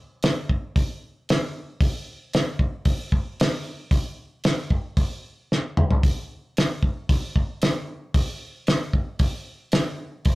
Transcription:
0.23 snare, open hi-hat
0.49 kick
0.76 kick, open hi-hat
1.29 snare, open hi-hat
1.81 kick, open hi-hat
2.33 snare, open hi-hat
2.59 kick
2.85 kick, open hi-hat
3.12 kick
3.40 snare, open hi-hat
3.91 kick, open hi-hat
4.44 snare, open hi-hat
4.70 kick
4.97 kick, open hi-hat
5.52 snare
5.77 mid tom
5.91 floor tom
6.03 kick, open hi-hat
6.57 snare, open hi-hat
6.83 kick
7.09 kick, open hi-hat
7.36 kick
7.62 snare, open hi-hat
8.14 kick, open hi-hat
8.67 snare, open hi-hat
8.93 kick
9.19 kick, open hi-hat
9.72 snare, open hi-hat
10.25 kick, open hi-hat

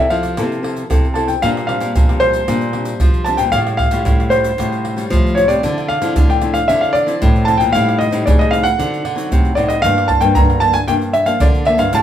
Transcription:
Already playing: C3
0.00 E5
0.10 F3 C4 E4 A4 F5, pandeiro
0.23 pandeiro, tamborim, shaker
0.37 C3 F3 C4 E4 A4, pandeiro, tamborim, shaker, surdo
0.52 pandeiro, shaker
0.62 C4 E4 A4, pandeiro, tamborim
0.76 pandeiro, shaker
0.90 C3 C4 E4 A4, pandeiro, tamborim, shaker, surdo
1.05 pandeiro, shaker
1.14 C4 E4 A4 A5, pandeiro, tamborim
1.28 G5, pandeiro, shaker
1.42 A#2 G3 C4 D4 F5, pandeiro, shaker, surdo
1.57 pandeiro, tamborim, shaker
1.67 G3 C4 D4 F5, pandeiro, tamborim
1.80 A#2, pandeiro, shaker
1.95 A#2 F3, pandeiro, shaker, surdo
2.09 G3 C4 D4, pandeiro, tamborim, shaker
2.20 C5, pandeiro, tamborim
2.33 pandeiro, shaker
2.48 A#2 G3 C4 D4, pandeiro, tamborim, shaker, surdo
2.61 pandeiro, shaker
2.73 G3 C4 D4, pandeiro, tamborim
2.85 pandeiro, shaker
3.00 F3, pandeiro, shaker, surdo
3.14 pandeiro, shaker
3.24 G3 C4 D4 A5, pandeiro, tamborim, shaker
3.37 A#2 G5, pandeiro, shaker
3.52 A2 G3 C#4 F4 F5, pandeiro, shaker, surdo
3.67 pandeiro, tamborim, shaker
3.77 F5, pandeiro, tamborim, surdo
3.91 A2 G3 C#4 F4, pandeiro, shaker
4.05 A2, pandeiro, shaker, surdo
4.20 pandeiro, tamborim, shaker
4.30 G3 C#4 F4 C5, pandeiro, tamborim, shaker
4.44 pandeiro, shaker
4.58 A2 G3 C#4 F4, pandeiro, tamborim, shaker, surdo
4.72 pandeiro, shaker
4.85 pandeiro, tamborim
4.96 G3 C#4 F4, pandeiro, shaker
5.10 A2 F3, pandeiro, shaker, surdo
5.27 pandeiro, shaker
5.35 G3 C#4 F4 C#5, pandeiro, tamborim, shaker
5.48 C3 D5, pandeiro, shaker
5.63 D3 F3 C4 E4, pandeiro, shaker, surdo
5.78 pandeiro, tamborim, shaker
5.88 F5, pandeiro, tamborim
6.02 D3 F3 C4 E4, pandeiro, shaker
6.16 A2 D3, pandeiro, shaker, surdo
6.30 G5, pandeiro, tamborim, shaker
6.41 F3 C4 E4, pandeiro, tamborim, shaker
6.54 F5, pandeiro, shaker
6.68 D3 F3 C4 E4 E5, pandeiro, tamborim, shaker, surdo
6.81 F5, pandeiro, shaker
6.93 D5, pandeiro, tamborim, shaker
7.06 F3 C4 E4, pandeiro, shaker
7.21 A2, pandeiro, shaker, surdo
7.36 pandeiro, shaker
7.45 F3 C4 E4 A5, pandeiro, tamborim, shaker
7.58 A#2 G5, pandeiro, shaker
7.73 A2 G3 C4 D#4 F5, pandeiro, shaker, surdo
7.89 pandeiro, tamborim, shaker
7.99 D#5, pandeiro, tamborim, shaker
8.11 A2 G3 C4 D#4, pandeiro, shaker
8.25 A2 C#3 D5, pandeiro, shaker, surdo
8.39 D#5, pandeiro, tamborim, shaker
8.50 G3 C4 D#4 F5, pandeiro, tamborim, shaker
8.63 F#5, pandeiro, shaker
8.78 D3 F#3 C4 D#4, pandeiro, tamborim, shaker, surdo
8.94 pandeiro, shaker
9.05 D3, pandeiro, tamborim
9.15 F#3 C4 D#4, pandeiro, shaker
9.30 A2 C3, pandeiro, shaker, surdo
9.45 pandeiro, shaker
9.55 A2 F#3 C4 D#4 D5, pandeiro, tamborim, shaker
9.69 D#5, pandeiro, shaker
9.82 G2 F3 A#3 D4 F5, pandeiro, shaker, surdo
9.98 pandeiro, tamborim, shaker
10.08 A5, pandeiro, tamborim, surdo
10.20 G2 F3 A#3 D4 G5, pandeiro, shaker
10.35 G2 D3 A#5, pandeiro, shaker, surdo
10.50 pandeiro, tamborim, shaker
10.60 F3 A#3 D4 A5, pandeiro, tamborim
10.73 G#5, pandeiro, shaker
10.88 G2 F3 A#3 D4 G5, pandeiro, tamborim, shaker, surdo
11.01 pandeiro, shaker
11.13 E5, pandeiro, tamborim, shaker
11.26 F3 A#3 D4 F5, pandeiro, shaker
11.40 D3 D5, pandeiro, shaker, surdo
11.54 pandeiro, shaker
11.65 F3 A#3 D4 E5, pandeiro, tamborim
11.78 G2 F5, pandeiro, shaker
11.93 A2 G3 C#4 E4 A5, pandeiro, shaker, surdo

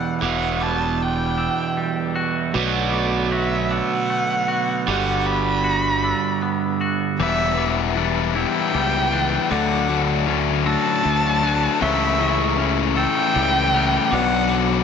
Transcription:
Already playing: E2 B2 E3 G3 D4 F#4 D5 F#5 F#6
0.21 E1 E2 B2 E3 E4 F#5 D6
0.60 G3 A5 D6
1.01 G5
1.38 D4 E6
1.77 G3
2.15 F#4 F#6
2.53 B1 B2 D3 F#3 A3 F#4 B4 D5 D6
2.58 B3
2.93 A3 D6
3.31 F#4 E5
3.71 D4 F#5 E6
4.10 A3
4.48 F#4 F#6
4.86 G1 G2 D3 G3 F#4 F#5 D6
5.26 B3 B5 D6
5.64 F#4
6.04 D4 E6
6.42 B3
6.81 F#4 F#6
7.18 E1 E2 E3 G3 B3 E4 G4 E5 D6
7.57 E3 G3 B3 E4 D6
7.96 E3 G3 B3 D4 E4
8.35 E3 G3 B3 E4 G5 E6
8.74 C#2 E3 G3 B3 E4
9.12 E3 G3 B3 D4 E4 F#6
9.50 D2 D3 F#3 A3 D4 F#4 A4 F#5 D6
9.89 D3 F#3 A3 D4 D6
10.27 D3 F#3 A3 C#4 D4
10.65 D3 F#3 A3 D4 F#4 A5 E6
11.03 D2 D3 F#3 A3 D4
11.42 D3 F#3 A3 D4 F#6
11.80 C#2 C#3 E3 A3 E4 G4 E5 C#6
12.19 C#3 E3 A3 E4 C#6
12.58 C#3 E3 A3 C#4 E4
12.96 C#3 E3 A3 E4 A4 G5 E6
13.34 C#2 C#3 E3 G3 A3 E4
13.73 C#3 E3 A3 C#4 E4 F#6
14.11 B1 B2 F#3 B3 D4 F#4 D5 F#5 D6
14.49 B2 F#3 B3 D4 D6

